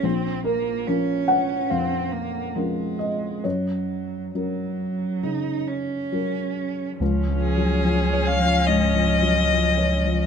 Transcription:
<<
  \new Staff \with { instrumentName = "Violin" } { \time 4/4 \key des \major \tempo 4 = 71 r1 | r1 | r8 aes'4 f''8 ees''2 | }
  \new Staff \with { instrumentName = "Viola" } { \time 4/4 \key des \major r1 | r1 | des'1 | }
  \new Staff \with { instrumentName = "Cello" } { \time 4/4 \key des \major c'8 bes8 des'4 c'8 bes8 aes4 | ges4 ges4 ees'8 des'4. | f1 | }
  \new Staff \with { instrumentName = "Felt piano" } { \time 4/4 \key des \major r8 bes'4 ges''8 f''4. ees''8 | des''2. r4 | r1 | }
  \new Staff \with { instrumentName = "Felt piano" } { \clef bass \time 4/4 \key des \major bes,,4 <f des' bes'>4 f,4 <f des' bes'>4 | ges,4 <ges des' bes'>4 des4 <ges des' bes'>4 | \tuplet 3/2 { des,8 f8 ges8 f8 des''8 f8 aes,8 f8 ges8 f8 des''8 f8 } | }
  \new Staff \with { instrumentName = "Sub bass" } { \clef bass \time 4/4 \key des \major r1 | r1 | des,1 | }
>>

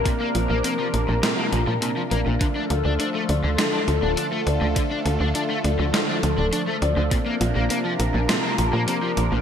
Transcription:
<<
  \new Staff \with { instrumentName = "Synth arpeggio sound" } { \time 4/4 \key d \minor \tempo 4 = 102 c'8 f'8 c'16 r16 bes'8 c'8 f'8 c'16 r16 bes'16 r16 | d'8 a'8 d'8 d''8 d'8 a'8 d'16 r16 d''8 | d'8 a'8 d'16 r16 d''8 d'8 a'8 d'16 r16 d''16 r16 | c'8 f'8 c'8 bes'8 c'8 f'8 c'16 r16 bes'8 | }
  \new Staff \with { instrumentName = "Analog synth pad" } { \time 4/4 \key d \minor << { <c bes d' bes'>1 | <d a f' a'>1~ | <d a f' a'>1 | <c bes d' bes'>1 | } \\ { f1 | f1~ | f1~ | f1 | } >> }
  \new Staff \with { instrumentName = "Overdriven electric guitar" } { \time 4/4 \key d \minor bes,16 bes16 r16 bes16 bes16 f16 r16 bes,16 bes,16 bes16 bes,16 f16 bes,16 f16 bes16 bes,16 | d16 d'16 r16 d'16 d'16 a16 r16 d16 d16 d'16 r16 d'16 d'16 a16 r16 d16 | d16 d'16 r16 d'16 d'16 a16 r16 d16 d16 d'16 r16 d'16 d'16 a16 r16 d16 | bes,16 bes16 r16 bes16 bes16 f16 r16 bes,16 bes,16 bes16 r16 bes16 bes16 f16 r16 bes,16 | }
  \new Staff \with { instrumentName = "Analog synth bass" } { \clef bass \time 4/4 \key d \minor r8 bes,,16 bes,,16 r8 bes,,16 bes,,16 r8 bes,,16 bes,16 r8 bes,,16 bes,,16 | r8 d,16 d,16 r8 d,16 d,16 r8 d,16 d,,16 r8 d,16 d,16 | r8 d,16 d,16 r8 d,16 d,16 r8 d,16 d,,16 r8 d,16 d,16 | r8 bes,,16 bes,,16 r8 bes,,16 bes,,16 r8 bes,,16 bes,16 r8 bes,,16 bes,,16 | }
  \new DrumStaff \with { instrumentName = "Drums" } \drummode { \time 4/4 <hh bd>8 hh8 hh8 hh8 <hh sn>8 hh8 hh8 hh8 | <hh bd>8 hh8 hh8 hh8 <hh sn>8 hh8 hh8 hh8 | <hh bd>8 hh8 hh8 hh8 <hh sn>8 hh8 hh8 hh8 | <hh bd>8 hh8 hh8 hh8 <hh sn>8 hh8 hh8 hh8 | }
>>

